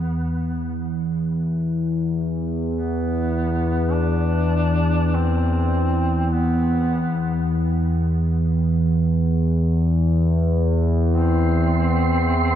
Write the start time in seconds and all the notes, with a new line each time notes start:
Already playing: E2 B3
2.76 B3
3.92 D4
5.15 C4
6.31 B3
11.11 C4 C6